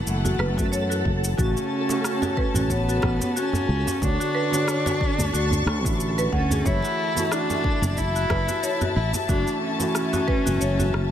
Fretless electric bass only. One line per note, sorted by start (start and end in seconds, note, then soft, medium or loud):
0.07 0.35 F#1 medium
0.39 0.59 F#1 loud
0.58 1.01 F#2 medium
1.06 1.33 F#1 loud
1.39 1.54 A1 loud
2.55 2.99 A1 loud
3.03 3.18 A1 medium
3.69 3.84 C#2 loud
4.02 4.17 D2 loud
5.19 5.31 D2 medium
5.34 5.62 D2 medium
5.66 5.85 D2 loud
5.85 6.29 A1 medium
6.33 6.61 D2 medium
6.65 6.81 F#1 loud
7.82 8.26 F#1 medium
8.30 8.45 F#1 medium
8.96 9.12 A1 loud
9.29 9.44 F#1 loud
10.47 10.59 F#1 medium
10.62 10.90 F#1 medium
10.94 11.11 F#1 loud